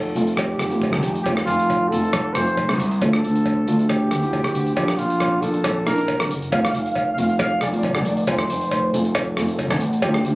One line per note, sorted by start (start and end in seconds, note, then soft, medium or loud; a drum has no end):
0.00 0.12 F1 medium
0.00 0.34 A4 medium
0.15 0.57 F1 medium
0.15 0.49 A3 medium
0.15 0.49 C4 medium
0.15 0.50 F4 medium
0.15 closed hi-hat medium
0.27 closed hi-hat medium
0.36 1.21 G4 medium
0.36 kick loud
0.36 cross-stick medium
0.36 closed hi-hat medium
0.36 cowbell medium
0.59 0.93 F1 medium
0.59 cross-stick medium
0.59 closed hi-hat medium
0.71 1.04 A3 medium
0.71 1.04 C4 medium
0.71 1.04 F4 medium
0.71 closed hi-hat medium
0.82 kick medium
0.82 closed hi-hat medium
0.82 cowbell medium
0.93 1.04 D2 medium
0.93 cross-stick medium
1.03 1.25 F1 medium
1.03 closed hi-hat medium
1.15 closed hi-hat medium
1.22 1.46 F1 medium
1.22 1.33 G4 medium
1.22 kick loud
1.22 closed hi-hat medium
1.26 1.66 A3 medium
1.26 1.66 C4 medium
1.26 1.66 F4 medium
1.26 cowbell medium
1.37 cross-stick medium
1.46 1.88 F1 medium
1.46 1.90 F4 medium
1.46 closed hi-hat medium
1.59 closed hi-hat medium
1.70 kick medium
1.70 closed hi-hat medium
1.70 cowbell medium
1.89 2.32 F1 medium
1.89 2.19 A3 medium
1.89 2.19 C4 medium
1.89 2.35 A4 medium
1.89 closed hi-hat medium
1.93 2.19 F4 medium
2.03 closed hi-hat medium
2.13 kick loud
2.13 cross-stick medium
2.13 closed hi-hat medium
2.13 cowbell medium
2.34 2.71 F1 medium
2.34 2.76 A3 medium
2.34 2.76 C4 medium
2.34 2.79 C5 loud
2.34 cross-stick medium
2.34 closed hi-hat medium
2.38 2.77 F4 medium
2.47 closed hi-hat medium
2.57 kick medium
2.57 closed hi-hat medium
2.57 cowbell medium
2.69 2.80 D2 medium
2.69 cross-stick medium
2.80 3.00 C2 medium
2.80 closed hi-hat medium
2.91 closed hi-hat medium
3.02 3.22 D2 medium
3.02 3.42 A3 medium
3.02 3.42 D4 medium
3.02 3.42 F4 medium
3.02 3.91 A4 medium
3.02 kick loud
3.02 closed hi-hat medium
3.02 cowbell medium
3.13 cross-stick medium
3.24 3.64 D2 medium
3.24 closed hi-hat medium
3.36 closed hi-hat medium
3.46 kick medium
3.46 closed hi-hat medium
3.46 cowbell medium
3.67 4.08 D2 medium
3.67 4.01 A3 medium
3.67 4.01 D4 medium
3.67 4.01 F4 medium
3.67 closed hi-hat medium
3.79 closed hi-hat medium
3.89 4.75 G4 medium
3.89 kick loud
3.89 cross-stick medium
3.89 closed hi-hat medium
3.89 cowbell medium
4.11 4.44 D2 medium
4.11 cross-stick medium
4.11 closed hi-hat medium
4.22 4.55 A3 medium
4.22 4.55 D4 medium
4.22 4.56 E4 medium
4.22 closed hi-hat medium
4.33 kick medium
4.33 closed hi-hat medium
4.33 cowbell medium
4.44 4.55 C2 medium
4.44 cross-stick medium
4.55 4.75 D2 medium
4.55 closed hi-hat medium
4.67 closed hi-hat medium
4.75 4.97 A#1 medium
4.75 5.17 A#3 medium
4.75 5.17 D4 medium
4.75 5.17 F4 medium
4.75 5.00 G4 medium
4.75 kick loud
4.75 closed hi-hat medium
4.75 cowbell medium
4.88 cross-stick medium
4.98 5.39 A#1 medium
4.98 5.43 F4 medium
4.98 closed hi-hat medium
5.10 closed hi-hat medium
5.20 kick medium
5.20 cross-stick medium
5.20 closed hi-hat medium
5.20 cowbell medium
5.41 5.83 A#1 medium
5.41 5.70 A#3 medium
5.41 5.69 D4 medium
5.41 5.70 F4 medium
5.41 5.87 A4 loud
5.41 closed hi-hat medium
5.54 closed hi-hat medium
5.64 kick loud
5.64 cross-stick medium
5.64 closed hi-hat medium
5.64 cowbell medium
5.86 6.19 A#1 medium
5.86 6.26 A#3 medium
5.86 6.26 D4 medium
5.86 6.27 E4 medium
5.86 6.30 A#4 medium
5.86 cross-stick medium
5.86 closed hi-hat medium
5.98 closed hi-hat medium
6.08 kick medium
6.08 closed hi-hat medium
6.08 cowbell medium
6.19 6.30 G1 medium
6.19 cross-stick medium
6.30 6.50 F#1 medium
6.30 closed hi-hat medium
6.42 closed hi-hat medium
6.52 6.73 F1 medium
6.52 6.92 A3 medium
6.52 6.92 C4 medium
6.52 6.92 F4 medium
6.52 6.60 F5 medium
6.52 kick loud
6.52 closed hi-hat medium
6.52 cowbell medium
6.62 6.68 F5 medium
6.62 cross-stick medium
6.69 6.75 F5 medium
6.74 7.15 F1 medium
6.74 6.81 F5 medium
6.74 closed hi-hat medium
6.82 6.89 F5 medium
6.86 closed hi-hat medium
6.91 6.96 F5 medium
6.95 7.04 F5 medium
6.95 kick medium
6.95 closed hi-hat medium
6.95 cowbell medium
7.05 7.12 F5 medium
7.13 7.20 F5 medium
7.18 7.58 F1 medium
7.18 7.52 A3 medium
7.18 7.52 C4 medium
7.18 7.52 F4 medium
7.18 7.28 F5 medium
7.18 closed hi-hat medium
7.28 7.35 F5 medium
7.28 closed hi-hat medium
7.39 7.61 F5 medium
7.39 kick loud
7.39 cross-stick medium
7.39 closed hi-hat medium
7.39 cowbell medium
7.61 7.95 F1 medium
7.61 7.69 D5 medium
7.61 cross-stick medium
7.61 closed hi-hat medium
7.70 8.06 A3 medium
7.70 8.06 C4 medium
7.70 8.06 F4 medium
7.70 7.77 D5 medium
7.70 closed hi-hat medium
7.77 7.84 D5 medium
7.83 7.92 D5 medium
7.83 kick medium
7.83 closed hi-hat medium
7.83 cowbell medium
7.92 8.05 D2 medium
7.92 7.99 D5 medium
7.92 cross-stick medium
8.01 8.25 F1 medium
8.01 8.07 D5 medium
8.05 8.15 D5 medium
8.05 closed hi-hat medium
8.15 8.29 D5 medium
8.15 closed hi-hat medium
8.27 8.48 F1 medium
8.27 8.67 A3 medium
8.27 8.67 C4 medium
8.27 8.67 F4 medium
8.27 8.70 C5 medium
8.27 kick loud
8.27 closed hi-hat medium
8.27 cowbell medium
8.39 cross-stick medium
8.49 8.90 F1 medium
8.49 closed hi-hat medium
8.61 closed hi-hat medium
8.71 8.92 C5 medium
8.71 kick medium
8.71 closed hi-hat medium
8.71 cowbell medium
8.93 9.34 F1 medium
8.93 9.20 A3 medium
8.93 9.20 C4 medium
8.93 9.20 F4 medium
8.93 9.00 A4 medium
8.93 closed hi-hat medium
9.01 9.06 A4 soft
9.05 9.14 A4 medium
9.05 closed hi-hat medium
9.15 9.22 A4 soft
9.15 kick loud
9.15 cross-stick medium
9.15 closed hi-hat medium
9.15 cowbell medium
9.22 9.30 A4 soft
9.32 9.38 A4 soft
9.37 9.70 F1 medium
9.37 9.77 A3 medium
9.37 9.77 C4 medium
9.37 9.77 F4 medium
9.37 9.45 A4 soft
9.37 cross-stick medium
9.37 closed hi-hat medium
9.45 9.52 A4 soft
9.45 closed hi-hat medium
9.53 9.59 A4 soft
9.59 9.68 A4 soft
9.59 kick medium
9.59 closed hi-hat medium
9.59 cowbell medium
9.68 9.81 D2 medium
9.68 9.76 A4 medium
9.68 cross-stick medium
9.80 10.01 A1 medium
9.80 closed hi-hat medium
9.93 closed hi-hat medium
10.02 10.23 D2 medium
10.02 10.35 A3 medium
10.02 10.35 D4 medium
10.02 10.35 F4 medium
10.02 10.09 G4 medium
10.02 kick loud
10.02 closed hi-hat medium
10.02 cowbell loud
10.10 10.17 G4 medium
10.14 cross-stick medium
10.19 10.25 G4 medium
10.24 10.35 D2 medium
10.24 10.33 G4 medium
10.24 closed hi-hat medium